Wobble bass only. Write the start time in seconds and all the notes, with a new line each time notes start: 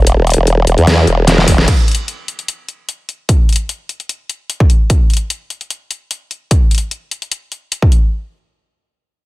Already playing: E1
0.17 E1
0.37 E1
0.47 E1
0.67 E1
0.78 E2
1.07 E1
1.48 E1